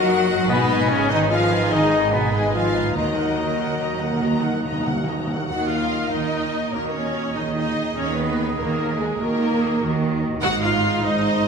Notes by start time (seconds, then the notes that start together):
Already playing: F#1 D#3 F#3 D#4 F#4 A#4 F#5
0.07 F#4 D#5 F#5
0.27 A#4 D#5 F#5
0.31 G#2
0.36 G#3
0.40 D#4
0.45 B2 B3 B4 D#5 G#5
0.49 G#1 D#3 D#4 G#4 D#5
0.68 B4 D#5 G#5
0.89 C#3 C#4 G#4 C#5 D#5 G#5
1.09 D#3 D#4 B4 D#5 G#5
1.30 F3 F4 G#4 D#5 F5 G#5
1.49 B4 D#5 G#5
1.70 D#3 D#4 G#4 D#5 G#5
1.91 B4 D#5 G#5
2.11 B2 B3 G#4 B4 D#5 G#5
2.31 G#2 G#3 G#4 B4 D#5 G#5
2.52 F3 F4 G#4 D#5 F5 G#5
2.74 D#3 B4 D#5 G#5
2.83 F#3
2.87 D#4
2.94 D#2 D#3 F#3 D#4 F#4 A#4 D#5 A#5
2.98 D#5
3.05 D#3
3.16 A#4 F#5
3.21 D#3
3.29 D#3
3.36 D#3 F#4 D#5 A#5
3.43 D#3
3.58 A#4 F#5
3.67 D#3
3.79 D#3 F#4 D#5 A#5
3.90 D#3
3.97 D#3 A#4
4.01 D#3 F#5
4.13 D#3
4.20 D#3 F#4 D#5 A#5
4.27 D#3
4.34 D#3
4.42 D#3 A#4 F#5
4.50 D#3
4.57 D#3
4.63 D#3 F#4 D#5 A#5
4.72 D#3
4.80 D#3
4.85 D#3 A#4 F#5
4.96 D#3
5.04 D#3 F#4 D#5
5.08 D#3 A#5
5.19 D#3
5.27 D#3 A#4 F#5
5.32 D#3
5.37 F#3
5.41 D#4 D#5
5.47 D#2 A#2 D#3 D#4 F#4 A#4 D#5 F#5
5.52 F#3
5.69 F4 F5
6.11 D#2 D#3 D#4 D#5
6.73 D#2 D#3 A#3 F#4 A#4
6.94 C#4 C#5
7.36 D#2 D#3 D#4 G#4 D#5
7.56 D#4 D#5
7.97 D#2 D#3 C#4 C#5
8.17 B3 B4
8.57 D#2 D#3 A#3 A#4
8.99 G#3 G#4
9.19 D#2 D#3 A#3 F#4 A#4
9.41 A#4
9.61 G#4
9.82 D#2 D#3 F#4
10.25 G#2
10.29 G#3
10.34 D#4
10.38 G#2 D#5 F#5
10.42 G#1 G#2 D#3 G#3 D#4 F#4 D#5
10.62 F4 F5
11.02 G#1 G#2 D#4 C5 D#5